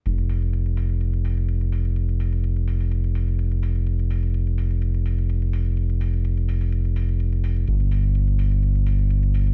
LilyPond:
<<
  \new Staff \with { instrumentName = "Sub bass" } { \clef bass \time 4/4 \key g \dorian \tempo 4 = 126 f,,1~ | f,,1~ | f,,1~ | f,,1 |
g,,1 | }
  \new DrumStaff \with { instrumentName = "Drums" } \drummode { \time 4/4 hh16 hh16 hho16 hh16 hh16 hh16 hho16 hh16 hh16 hh16 hho16 hh16 hh16 hh16 hho16 hh16 | hh16 hh16 hho16 hh16 hh16 hh16 hho16 hho16 hh16 hh16 hho16 hh16 hh16 hh16 hho16 hh16 | hh16 hh16 hho16 hh16 hh16 hh16 hho16 hh16 hh16 hh16 hho16 hh16 hh16 hh16 hho16 hh16 | hh16 hh16 hho16 hh16 hh16 hh16 hho16 hho16 hh16 hh16 hho16 hh16 hh16 hh16 hho16 hh16 |
hh16 hh16 hho16 hh16 hh16 hh16 hho16 hh16 hh16 hh16 hho16 hh16 hh16 hh16 hho16 hh16 | }
>>